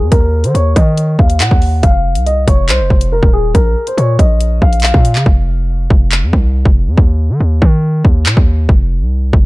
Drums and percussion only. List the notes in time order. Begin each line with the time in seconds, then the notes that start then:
0.12 kick, closed hi-hat
0.44 closed hi-hat
0.55 closed hi-hat
0.76 kick, closed hi-hat
0.98 closed hi-hat
1.19 kick
1.30 closed hi-hat
1.40 clap, closed hi-hat
1.51 kick
1.62 open hi-hat
1.83 kick, closed hi-hat
2.15 closed hi-hat
2.26 closed hi-hat
2.48 kick, closed hi-hat
2.69 clap, closed hi-hat
2.90 kick
3.01 closed hi-hat
3.23 kick
3.55 kick, closed hi-hat
3.87 closed hi-hat
3.98 closed hi-hat
4.19 kick, closed hi-hat
4.41 closed hi-hat
4.62 kick
4.73 closed hi-hat
4.80 clap, closed hi-hat
4.87 closed hi-hat
4.94 kick
5.05 closed hi-hat
5.15 clap
5.26 kick
5.90 kick
6.12 clap
6.33 kick
6.65 kick
6.98 kick
7.62 kick
8.05 kick
8.26 clap
8.37 kick
8.69 kick
9.33 kick